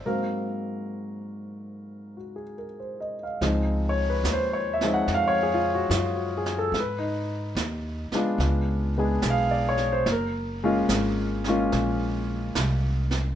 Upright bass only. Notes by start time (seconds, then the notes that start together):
3.41 C#2
4.23 D#2
5.07 F2
5.90 F#2
6.72 G#2
7.55 D#2
8.11 muted upright bass stroke
8.38 C#2
9.23 B1
10.06 F#1
10.89 G#1
11.72 A#1
12.56 C2